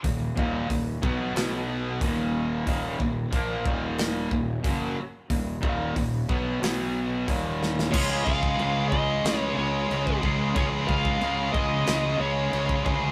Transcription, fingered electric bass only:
\new Staff \with { instrumentName = "Fingered electric bass" } { \clef bass \time 4/4 \key des \mixolydian \tempo 4 = 91 ees,,8 ees,,8 ees,,8 ces,8 b,,4 ees,,4 | ees,,8 ees,,8 bes,,8 ees,,4 ees,,8 ges,,8 r8 | ees,,8 ees,,8 ees,,8 ces,8 b,,4 ees,,4 | des,8 des,8 des,8 des,8 des,8 des,8 des,8 des,8 |
des,8 des,8 des,8 des,8 des,8 des,8 des,8 d,8 | }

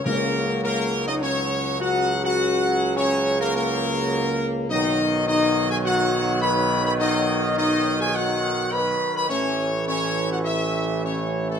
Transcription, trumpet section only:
\new Staff \with { instrumentName = "Trumpet section" } { \time 4/4 \key ges \major \tempo 4 = 104 bes'4 bes'8. ees''16 des''4 ges''8. ges''16~ | ges''4 des''8. bes'16 bes'2 | ees''4 ees''8. aes''16 ges''4 ces'''8. ces'''16 | ees''4 ees''8. aes''16 ges''4 ces'''8. ces'''16 |
cis''4 cis''8. ges''16 e''4 cis''8. a'16 | }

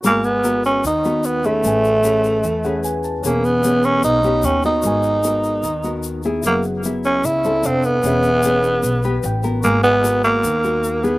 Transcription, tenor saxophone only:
\new Staff \with { instrumentName = "Tenor saxophone" } { \time 4/4 \key gis \minor \tempo 4 = 150 ais8 b4 cis'8 dis'4 b8 a8~ | a2.~ a8 r8 | ais8 b4 cis'8 dis'4 cis'8 dis'8~ | dis'2.~ dis'8 r8 |
ais8 r4 cis'8 e'4 c'8 b8~ | b2.~ b8 r8 | ais8 b4 ais2 b8 | }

